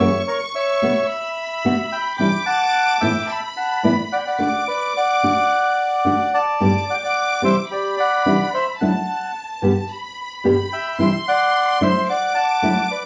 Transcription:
0.00 0.09 C#4 medium
0.00 0.09 F#4 medium
0.00 0.22 C#5 medium
0.00 0.22 E5 medium
0.00 1.05 C#6 medium
0.27 0.40 A#4 medium
0.27 0.39 C#5 medium
0.55 1.06 C#5 medium
0.55 1.96 E5 medium
0.82 0.91 B2 medium
0.82 0.91 D3 medium
0.82 0.91 A3 medium
0.82 0.91 B3 medium
0.82 0.92 F#4 medium
1.10 2.15 B5 medium
1.65 1.73 B2 medium
1.65 1.73 D3 medium
1.65 1.74 A3 medium
1.65 1.74 B3 medium
1.65 1.74 F#4 medium
1.92 2.16 G5 medium
1.92 2.16 B5 medium
2.18 2.28 C3 medium
2.18 2.28 E3 medium
2.18 2.28 G3 medium
2.18 2.29 D4 medium
2.18 2.29 E4 medium
2.18 2.44 G5 medium
2.18 2.44 B5 medium
2.18 3.28 D6 medium
2.46 2.97 F#5 medium
2.46 3.02 A5 loud
3.01 3.10 A2 medium
3.01 3.10 E3 medium
3.01 3.11 A3 medium
3.01 3.11 B3 medium
3.01 3.11 E4 medium
3.01 3.26 E5 medium
3.01 3.29 G5 medium
3.27 3.40 E5 medium
3.27 3.40 A5 medium
3.27 4.39 B5 medium
3.57 3.82 F#5 medium
3.57 3.82 A5 medium
3.83 3.92 A2 medium
3.83 3.93 E3 medium
3.83 3.93 A3 medium
3.83 3.93 B3 medium
3.83 3.93 E4 medium
3.83 3.96 B4 medium
3.83 3.96 D5 medium
4.12 4.18 D5 medium
4.12 4.18 F#5 medium
4.17 4.25 G5 medium
4.27 4.64 D5 medium
4.27 4.64 F#5 medium
4.38 4.48 D3 medium
4.38 4.48 A3 medium
4.38 4.48 D4 medium
4.38 4.48 F#4 medium
4.38 6.32 D6 medium
4.68 4.93 B4 medium
4.68 4.93 D5 medium
4.97 6.30 D5 medium
4.97 6.38 F#5 medium
5.23 5.31 D3 medium
5.23 5.32 A3 medium
5.23 5.32 D4 medium
5.23 5.32 F#4 medium
6.05 6.14 D3 medium
6.05 6.14 A3 medium
6.05 6.14 D4 medium
6.05 6.15 F#4 medium
6.34 6.85 D5 medium
6.34 6.85 A5 medium
6.60 6.69 G2 medium
6.60 6.69 A2 medium
6.60 6.70 D3 medium
6.60 6.69 G3 medium
6.60 6.70 B3 medium
6.60 6.70 G4 medium
6.60 7.67 D6 medium
6.90 6.95 D5 medium
6.90 6.96 F#5 medium
6.94 7.01 G5 medium
7.04 7.41 D5 medium
7.04 7.42 F#5 medium
7.42 7.52 C3 medium
7.42 7.52 E3 medium
7.42 7.52 G3 medium
7.42 7.52 D4 medium
7.42 7.52 E4 medium
7.42 7.56 C5 medium
7.42 7.57 E5 medium
7.70 7.97 G4 medium
7.70 7.96 D5 medium
7.70 8.76 B5 medium
7.97 8.49 D5 medium
7.97 8.50 F#5 medium
8.26 8.35 C3 medium
8.26 8.35 E3 medium
8.26 8.35 G3 medium
8.26 8.35 D4 medium
8.26 8.36 E4 medium
8.54 8.66 C5 soft
8.54 8.67 E5 medium
8.80 8.90 D3 medium
8.80 8.90 F#3 medium
8.80 8.90 A3 medium
8.80 8.90 D4 medium
8.80 8.91 E4 medium
8.80 9.32 F#5 medium
8.80 9.90 A5 medium
8.80 9.33 A5 medium
9.62 9.71 G2 medium
9.62 9.71 B2 medium
9.62 9.71 D3 medium
9.62 9.72 G3 medium
9.62 9.72 B3 medium
9.62 9.72 G4 medium
9.90 10.45 B5 medium
10.44 10.53 G2 medium
10.44 10.54 B2 medium
10.44 10.54 D3 medium
10.44 10.54 G3 medium
10.44 10.54 B3 medium
10.44 10.54 G4 medium
10.44 10.97 B5 medium
10.73 10.98 E5 medium
10.73 10.98 G5 medium
10.98 11.08 C3 medium
10.98 11.08 E3 medium
10.98 11.09 G3 medium
10.98 11.09 D4 medium
10.98 11.09 E4 medium
10.98 11.14 E5 medium
10.98 11.12 G5 medium
10.98 12.05 C6 medium
11.28 11.79 D5 medium
11.28 11.78 F#5 medium
11.81 11.90 D3 medium
11.81 11.90 F#3 medium
11.81 11.90 A3 medium
11.81 11.90 D4 medium
11.81 11.91 E4 medium
11.81 12.08 C5 medium
11.81 12.07 E5 medium
12.10 12.35 D5 medium
12.10 12.34 F#5 medium
12.10 13.06 D6 medium
12.35 12.87 F#5 medium
12.35 12.86 A5 medium
12.62 12.72 D3 medium
12.62 12.72 F#3 medium
12.62 12.72 A3 medium
12.62 12.72 D4 medium
12.62 12.72 E4 medium
12.91 13.04 B4 medium
12.91 13.03 D5 medium

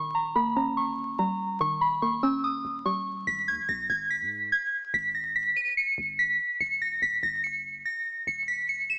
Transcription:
0.00 0.34 D#1 loud
0.00 0.98 D#3 loud
0.00 0.10 C#6 loud
0.15 0.31 A#5 medium
0.35 0.56 D#1 loud
0.35 1.40 A#3 loud
0.35 0.52 B5 medium
0.56 1.16 G1 loud
0.56 1.61 C#4 medium
0.56 0.73 A#5 medium
0.77 1.16 C#6 medium
1.19 2.23 G3 medium
1.19 1.58 A#5 medium
1.61 2.61 D#1 loud
1.61 2.65 D#3 loud
1.61 1.77 C#6 loud
1.81 1.98 B5 medium
2.02 3.06 A#3 medium
2.02 2.19 C#6 medium
2.23 3.27 C#4 medium
2.23 2.40 E6 medium
2.44 2.83 D#6 medium
2.65 3.25 D#1 loud
2.85 3.27 G3 medium
2.85 3.02 C#6 medium
3.27 3.50 G#1 loud
3.27 3.44 B6 loud
3.48 3.60 D#2 loud
3.48 3.65 G#6 medium
3.59 3.68 G#1 loud
3.69 3.89 B1 loud
3.69 3.85 A#6 medium
3.90 4.22 G#1 loud
3.90 4.06 G#6 medium
4.10 4.50 B6 medium
4.21 4.51 G#2 loud
4.52 4.91 G#6 medium
4.94 5.54 G#1 loud
4.94 5.11 B6 loud
5.15 5.31 A#6 medium
5.36 5.52 B6 medium
5.56 5.73 D#7 medium
5.77 6.16 C#7 medium
5.98 6.38 G#1 loud
6.19 6.58 B6 medium
6.60 7.01 D#1 loud
6.60 6.77 C#7 loud
6.82 6.98 A#6 medium
7.02 7.22 D#1 loud
7.02 7.19 B6 medium
7.23 7.83 G1 loud
7.23 7.40 A#6 medium
7.44 7.83 C#7 medium
7.86 8.25 A#6 medium
8.27 8.99 D#1 loud
8.27 8.44 C#7 loud
8.48 8.65 B6 medium
8.69 8.86 C#7 medium
8.90 8.99 E7 medium

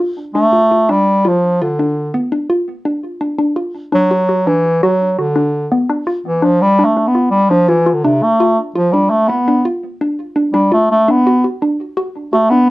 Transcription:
0.00 0.13 F4 medium
0.35 0.92 A3 loud
0.35 0.49 D4 medium
0.53 0.67 F4 medium
0.72 0.85 F4 medium
0.89 1.29 G3 medium
0.89 1.17 D4 medium
1.25 1.63 F3 medium
1.25 1.53 F4 medium
1.61 2.15 D3 medium
1.61 1.75 F4 medium
1.79 2.07 D4 medium
2.14 2.28 B3 medium
2.32 2.46 D4 medium
2.50 2.78 F4 medium
2.85 3.14 D4 medium
3.21 3.35 D4 medium
3.38 3.53 D4 medium
3.56 3.71 F4 medium
3.92 4.49 F#3 loud
3.92 4.07 D4 medium
4.11 4.25 F#4 medium
4.29 4.43 F#4 medium
4.47 4.82 E3 medium
4.47 4.75 D4 medium
4.83 5.16 F#3 medium
4.83 5.11 F#4 medium
5.18 5.69 D3 medium
5.18 5.33 F#4 medium
5.36 5.64 D4 medium
5.71 5.86 B3 medium
5.89 6.04 D4 medium
6.07 6.36 F4 medium
6.27 6.45 E3 medium
6.42 6.63 F3 medium
6.42 6.71 D4 medium
6.62 6.86 G3 medium
6.79 6.93 D4 medium
6.85 7.09 A3 medium
6.97 7.11 D4 medium
7.07 7.30 B3 medium
7.15 7.29 F4 medium
7.30 7.51 G3 medium
7.49 7.70 F3 medium
7.49 7.65 D4 medium
7.68 7.95 E3 medium
7.68 7.83 F4 medium
7.86 8.00 F4 medium
7.93 8.05 D3 medium
8.04 8.25 C3 medium
8.04 8.33 D4 medium
8.23 8.59 A3 loud
8.40 8.69 F4 medium
8.76 8.94 F3 medium
8.76 8.90 F4 medium
8.93 9.12 G3 medium
8.93 9.22 D4 medium
9.11 9.30 A3 loud
9.28 9.65 B3 medium
9.28 9.44 B3 medium
9.48 9.62 D4 medium
9.65 9.94 F4 medium
10.01 10.30 D4 medium
10.36 10.51 D4 medium
10.53 10.71 G3 medium
10.53 10.69 D4 medium
10.71 10.90 A3 medium
10.71 10.86 F4 medium
10.91 11.11 A3 loud
11.08 11.45 B3 medium
11.08 11.23 D4 medium
11.26 11.41 F#4 medium
11.44 11.59 F#4 medium
11.62 11.91 D4 medium
11.97 12.26 F#4 medium
12.33 12.52 A3 medium
12.33 12.48 F#4 medium
12.50 12.69 B3 medium
12.50 12.71 D4 medium

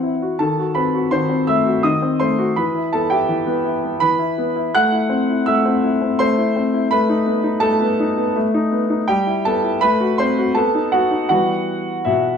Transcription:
0.00 0.37 E3 soft
0.00 0.13 C4 soft
0.00 0.32 E4 soft
0.00 0.38 F#5 medium
0.22 0.39 F#4 soft
0.39 1.10 D#3 soft
0.39 0.73 A4 soft
0.39 0.75 A5 medium
0.58 0.87 F#4 soft
0.75 1.04 C4 soft
0.75 1.09 B4 soft
0.75 1.11 B5 medium
0.95 1.23 F#4 soft
1.11 1.82 D#3 soft
1.11 1.46 C5 medium
1.11 1.47 C6 medium
1.29 1.59 C4 soft
1.47 1.77 A3 soft
1.47 1.82 E5 medium
1.47 1.84 E6 medium
1.66 1.95 F#4 soft
1.83 2.54 D#3 soft
1.83 2.18 D#5 soft
1.83 2.20 D#6 medium
2.02 2.31 C4 soft
2.20 2.49 A3 soft
2.20 2.54 C5 soft
2.20 2.56 C6 medium
2.39 2.56 F#4 soft
2.56 3.27 E3 soft
2.56 2.91 B4 soft
2.56 2.93 B5 medium
2.75 3.03 E4 soft
2.93 3.22 B3 soft
2.93 3.10 A4 medium
2.93 3.11 A5 medium
3.10 3.40 E4 soft
3.10 3.97 G4 medium
3.10 4.01 G5 medium
3.29 4.00 E3 soft
3.46 3.75 B3 soft
3.64 3.93 E4 soft
3.84 4.12 B3 soft
4.00 4.73 E3 soft
4.00 4.71 B4 medium
4.00 4.74 B5 medium
4.19 4.49 E4 soft
4.38 4.67 B3 soft
4.56 4.74 E4 soft
4.75 5.46 A3 medium
4.75 5.43 F#5 medium
4.75 5.47 F#6 medium
4.92 5.21 E4 soft
5.09 5.39 C4 soft
5.29 5.58 E4 soft
5.46 6.18 A3 medium
5.46 6.16 E5 medium
5.46 6.19 E6 medium
5.66 5.94 C4 soft
5.83 6.12 E4 soft
6.02 6.30 C4 soft
6.19 6.89 A3 medium
6.19 6.87 C5 medium
6.19 6.91 C6 medium
6.38 6.66 E4 soft
6.56 6.84 C4 soft
6.74 6.91 E4 soft
6.91 7.59 A3 medium
6.91 7.59 B4 medium
6.91 7.63 B5 medium
7.09 7.38 D#4 soft
7.26 7.55 B3 soft
7.44 7.73 D#4 soft
7.60 8.34 A3 soft
7.60 8.31 A4 medium
7.60 8.34 A5 medium
7.81 8.10 B3 soft
8.00 8.29 D#4 soft
8.17 8.46 B3 soft
8.36 9.06 A3 soft
8.54 8.83 D#4 medium
8.72 9.01 B3 soft
8.90 9.08 D#4 soft
9.08 9.80 G3 medium
9.08 9.43 G4 medium
9.08 9.44 G5 medium
9.27 9.56 E4 soft
9.45 9.75 B3 soft
9.45 9.80 A4 medium
9.45 9.82 A5 medium
9.64 9.82 E4 soft
9.81 10.53 A3 medium
9.81 10.16 B4 medium
9.81 10.18 B5 medium
10.01 10.30 F#4 soft
10.18 10.48 C4 soft
10.18 10.53 C5 medium
10.18 10.55 C6 medium
10.39 10.56 F#4 soft
10.55 10.91 B3 medium
10.55 10.90 A4 medium
10.55 10.92 A5 medium
10.75 11.04 D#4 soft
10.92 11.22 B3 soft
10.92 11.27 F#4 medium
10.92 11.27 F#5 medium
11.11 11.30 D#4 soft
11.29 11.82 E3 soft
11.29 11.90 G3 soft
11.29 11.90 B3 soft
11.29 12.01 F#4 soft
11.29 12.04 F#5 medium
12.05 12.38 B2 soft
12.05 12.38 E4 soft
12.05 12.38 E5 soft

